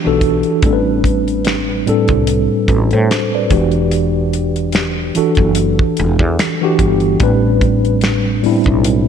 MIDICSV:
0, 0, Header, 1, 5, 480
1, 0, Start_track
1, 0, Tempo, 821918
1, 369, Time_signature, 4, 2, 24, 8
1, 5303, End_track
2, 0, Start_track
2, 0, Title_t, "Tine electric piano"
2, 0, Program_c, 0, 4
2, 0, Control_c, 0, 64, 127
2, 0, Note_on_c, 0, 52, 83
2, 0, Note_on_c, 0, 62, 79
2, 0, Note_on_c, 0, 66, 81
2, 0, Note_on_c, 0, 67, 84
2, 25, Note_off_c, 0, 52, 0
2, 25, Note_on_c, 0, 52, 91
2, 28, Note_off_c, 0, 62, 0
2, 28, Note_on_c, 0, 62, 84
2, 35, Note_off_c, 0, 66, 0
2, 35, Note_on_c, 0, 66, 80
2, 43, Note_on_c, 0, 69, 104
2, 313, Note_off_c, 0, 52, 0
2, 315, Note_off_c, 0, 62, 0
2, 319, Note_off_c, 0, 66, 0
2, 322, Note_off_c, 0, 69, 0
2, 370, Note_on_c, 0, 45, 90
2, 375, Control_c, 0, 64, 0
2, 375, Note_on_c, 0, 55, 79
2, 379, Note_off_c, 0, 67, 0
2, 380, Note_on_c, 0, 60, 72
2, 383, Note_on_c, 0, 62, 82
2, 388, Note_on_c, 0, 69, 80
2, 422, Note_off_c, 0, 69, 0
2, 425, Note_on_c, 0, 71, 87
2, 497, Control_c, 0, 64, 127
2, 977, Note_off_c, 0, 45, 0
2, 979, Note_off_c, 0, 55, 0
2, 981, Note_off_c, 0, 60, 0
2, 983, Note_off_c, 0, 62, 0
2, 1004, Note_off_c, 0, 71, 0
2, 1087, Note_on_c, 0, 45, 86
2, 1091, Note_on_c, 0, 55, 82
2, 1097, Note_on_c, 0, 60, 74
2, 1100, Note_on_c, 0, 62, 76
2, 1104, Note_on_c, 0, 69, 94
2, 1572, Note_off_c, 0, 69, 0
2, 1579, Note_on_c, 0, 69, 53
2, 1585, Note_on_c, 0, 66, 46
2, 1704, Note_off_c, 0, 69, 0
2, 1707, Note_off_c, 0, 66, 0
2, 1710, Note_on_c, 0, 72, 58
2, 1715, Note_on_c, 0, 69, 55
2, 1782, Note_off_c, 0, 45, 0
2, 1784, Note_off_c, 0, 55, 0
2, 1787, Note_off_c, 0, 60, 0
2, 1789, Note_off_c, 0, 62, 0
2, 1936, Note_off_c, 0, 72, 0
2, 1938, Note_off_c, 0, 69, 0
2, 1956, Note_on_c, 0, 74, 65
2, 1959, Note_on_c, 0, 71, 59
2, 2042, Note_on_c, 0, 52, 82
2, 2050, Note_on_c, 0, 62, 71
2, 2053, Note_on_c, 0, 66, 69
2, 2055, Control_c, 0, 64, 0
2, 2059, Note_on_c, 0, 67, 84
2, 2163, Control_c, 0, 64, 127
2, 2179, Note_off_c, 0, 74, 0
2, 2181, Note_off_c, 0, 71, 0
2, 2844, Note_off_c, 0, 52, 0
2, 2848, Note_off_c, 0, 62, 0
2, 2849, Note_off_c, 0, 66, 0
2, 2852, Note_off_c, 0, 67, 0
2, 3009, Note_on_c, 0, 52, 94
2, 3014, Note_on_c, 0, 62, 80
2, 3019, Note_on_c, 0, 66, 79
2, 3024, Note_on_c, 0, 69, 87
2, 3703, Note_off_c, 0, 52, 0
2, 3706, Note_off_c, 0, 62, 0
2, 3709, Note_off_c, 0, 66, 0
2, 3711, Note_off_c, 0, 69, 0
2, 3864, Note_on_c, 0, 52, 94
2, 3870, Note_on_c, 0, 62, 81
2, 3873, Note_on_c, 0, 66, 89
2, 3880, Note_on_c, 0, 67, 104
2, 4153, Note_off_c, 0, 52, 0
2, 4156, Note_off_c, 0, 62, 0
2, 4157, Note_off_c, 0, 66, 0
2, 4161, Note_off_c, 0, 67, 0
2, 4207, Note_on_c, 0, 45, 93
2, 4211, Note_on_c, 0, 55, 85
2, 4216, Control_c, 0, 64, 0
2, 4216, Note_on_c, 0, 60, 77
2, 4220, Note_on_c, 0, 62, 83
2, 4224, Note_on_c, 0, 71, 103
2, 4325, Control_c, 0, 64, 127
2, 4815, Note_off_c, 0, 45, 0
2, 4817, Note_off_c, 0, 55, 0
2, 4820, Note_off_c, 0, 60, 0
2, 4821, Note_off_c, 0, 62, 0
2, 4824, Note_off_c, 0, 71, 0
2, 4924, Note_on_c, 0, 45, 95
2, 4927, Note_on_c, 0, 55, 80
2, 4932, Note_on_c, 0, 59, 67
2, 4939, Note_on_c, 0, 62, 78
2, 4942, Note_on_c, 0, 64, 97
2, 4969, Note_on_c, 0, 60, 78
2, 4973, Note_off_c, 0, 59, 0
2, 5303, Note_off_c, 0, 45, 0
2, 5303, Note_off_c, 0, 55, 0
2, 5303, Note_off_c, 0, 60, 0
2, 5303, Note_off_c, 0, 62, 0
2, 5303, Note_off_c, 0, 64, 0
2, 5303, End_track
3, 0, Start_track
3, 0, Title_t, "Fretless electric bass"
3, 0, Program_c, 1, 35
3, 36, Note_on_c, 1, 35, 75
3, 248, Note_off_c, 1, 35, 0
3, 371, Note_on_c, 1, 33, 92
3, 1066, Note_off_c, 1, 33, 0
3, 1226, Note_on_c, 1, 36, 87
3, 1442, Note_off_c, 1, 36, 0
3, 1572, Note_on_c, 1, 33, 106
3, 1694, Note_off_c, 1, 33, 0
3, 1711, Note_on_c, 1, 45, 97
3, 1801, Note_off_c, 1, 45, 0
3, 2053, Note_on_c, 1, 28, 91
3, 2988, Note_off_c, 1, 28, 0
3, 3143, Note_on_c, 1, 30, 97
3, 3361, Note_off_c, 1, 30, 0
3, 3501, Note_on_c, 1, 28, 109
3, 3619, Note_off_c, 1, 28, 0
3, 3623, Note_on_c, 1, 40, 103
3, 3717, Note_off_c, 1, 40, 0
3, 3970, Note_on_c, 1, 31, 93
3, 4186, Note_off_c, 1, 31, 0
3, 4210, Note_on_c, 1, 33, 104
3, 4906, Note_off_c, 1, 33, 0
3, 5063, Note_on_c, 1, 35, 91
3, 5281, Note_off_c, 1, 35, 0
3, 5303, End_track
4, 0, Start_track
4, 0, Title_t, "Muted fretless electric bass strokes"
4, 1098, Note_on_c, 9, 29, 47
4, 1156, Note_off_c, 9, 29, 0
4, 3020, Note_on_c, 9, 29, 44
4, 3079, Note_off_c, 9, 29, 0
4, 4939, Note_on_c, 9, 29, 45
4, 4997, Note_off_c, 9, 29, 0
4, 5303, End_track
5, 0, Start_track
5, 0, Title_t, "Drums"
5, 125, Note_on_c, 9, 36, 84
5, 126, Note_on_c, 9, 42, 64
5, 183, Note_off_c, 9, 36, 0
5, 184, Note_off_c, 9, 42, 0
5, 253, Note_on_c, 9, 42, 35
5, 311, Note_off_c, 9, 42, 0
5, 365, Note_on_c, 9, 42, 75
5, 366, Note_on_c, 9, 36, 123
5, 423, Note_off_c, 9, 42, 0
5, 425, Note_off_c, 9, 36, 0
5, 608, Note_on_c, 9, 36, 74
5, 615, Note_on_c, 9, 42, 62
5, 666, Note_off_c, 9, 36, 0
5, 674, Note_off_c, 9, 42, 0
5, 746, Note_on_c, 9, 42, 35
5, 804, Note_off_c, 9, 42, 0
5, 845, Note_on_c, 9, 42, 59
5, 858, Note_on_c, 9, 38, 100
5, 863, Note_on_c, 9, 26, 88
5, 903, Note_off_c, 9, 42, 0
5, 917, Note_off_c, 9, 38, 0
5, 922, Note_off_c, 9, 26, 0
5, 1094, Note_on_c, 9, 42, 53
5, 1153, Note_off_c, 9, 42, 0
5, 1213, Note_on_c, 9, 42, 37
5, 1219, Note_on_c, 9, 36, 82
5, 1272, Note_off_c, 9, 42, 0
5, 1278, Note_off_c, 9, 36, 0
5, 1327, Note_on_c, 9, 42, 100
5, 1386, Note_off_c, 9, 42, 0
5, 1566, Note_on_c, 9, 36, 84
5, 1566, Note_on_c, 9, 42, 50
5, 1624, Note_off_c, 9, 36, 0
5, 1624, Note_off_c, 9, 42, 0
5, 1698, Note_on_c, 9, 42, 37
5, 1756, Note_off_c, 9, 42, 0
5, 1816, Note_on_c, 9, 42, 81
5, 1817, Note_on_c, 9, 38, 110
5, 1822, Note_on_c, 9, 26, 89
5, 1875, Note_off_c, 9, 42, 0
5, 1876, Note_off_c, 9, 38, 0
5, 1881, Note_off_c, 9, 26, 0
5, 2047, Note_on_c, 9, 36, 101
5, 2047, Note_on_c, 9, 42, 69
5, 2105, Note_off_c, 9, 42, 0
5, 2106, Note_off_c, 9, 36, 0
5, 2170, Note_on_c, 9, 42, 35
5, 2228, Note_off_c, 9, 42, 0
5, 2286, Note_on_c, 9, 42, 74
5, 2345, Note_off_c, 9, 42, 0
5, 2531, Note_on_c, 9, 42, 61
5, 2589, Note_off_c, 9, 42, 0
5, 2662, Note_on_c, 9, 42, 39
5, 2721, Note_off_c, 9, 42, 0
5, 2759, Note_on_c, 9, 42, 59
5, 2773, Note_on_c, 9, 38, 100
5, 2778, Note_on_c, 9, 26, 83
5, 2818, Note_off_c, 9, 42, 0
5, 2831, Note_off_c, 9, 38, 0
5, 2836, Note_off_c, 9, 26, 0
5, 3007, Note_on_c, 9, 42, 60
5, 3065, Note_off_c, 9, 42, 0
5, 3125, Note_on_c, 9, 42, 34
5, 3137, Note_on_c, 9, 36, 79
5, 3183, Note_off_c, 9, 42, 0
5, 3196, Note_off_c, 9, 36, 0
5, 3240, Note_on_c, 9, 42, 92
5, 3299, Note_off_c, 9, 42, 0
5, 3383, Note_on_c, 9, 36, 88
5, 3441, Note_off_c, 9, 36, 0
5, 3485, Note_on_c, 9, 42, 55
5, 3544, Note_off_c, 9, 42, 0
5, 3617, Note_on_c, 9, 36, 94
5, 3675, Note_off_c, 9, 36, 0
5, 3733, Note_on_c, 9, 42, 74
5, 3734, Note_on_c, 9, 38, 112
5, 3739, Note_on_c, 9, 26, 82
5, 3791, Note_off_c, 9, 42, 0
5, 3792, Note_off_c, 9, 38, 0
5, 3797, Note_off_c, 9, 26, 0
5, 3965, Note_on_c, 9, 36, 86
5, 3966, Note_on_c, 9, 42, 67
5, 4023, Note_off_c, 9, 36, 0
5, 4025, Note_off_c, 9, 42, 0
5, 4089, Note_on_c, 9, 42, 33
5, 4147, Note_off_c, 9, 42, 0
5, 4203, Note_on_c, 9, 42, 82
5, 4206, Note_on_c, 9, 36, 122
5, 4261, Note_off_c, 9, 42, 0
5, 4264, Note_off_c, 9, 36, 0
5, 4446, Note_on_c, 9, 36, 92
5, 4448, Note_on_c, 9, 42, 61
5, 4505, Note_off_c, 9, 36, 0
5, 4506, Note_off_c, 9, 42, 0
5, 4583, Note_on_c, 9, 42, 35
5, 4641, Note_off_c, 9, 42, 0
5, 4680, Note_on_c, 9, 42, 59
5, 4693, Note_on_c, 9, 38, 113
5, 4698, Note_on_c, 9, 26, 91
5, 4738, Note_off_c, 9, 42, 0
5, 4752, Note_off_c, 9, 38, 0
5, 4757, Note_off_c, 9, 26, 0
5, 4927, Note_on_c, 9, 46, 42
5, 4986, Note_off_c, 9, 46, 0
5, 5046, Note_on_c, 9, 42, 33
5, 5057, Note_on_c, 9, 36, 79
5, 5105, Note_off_c, 9, 42, 0
5, 5116, Note_off_c, 9, 36, 0
5, 5165, Note_on_c, 9, 42, 97
5, 5224, Note_off_c, 9, 42, 0
5, 5303, End_track
0, 0, End_of_file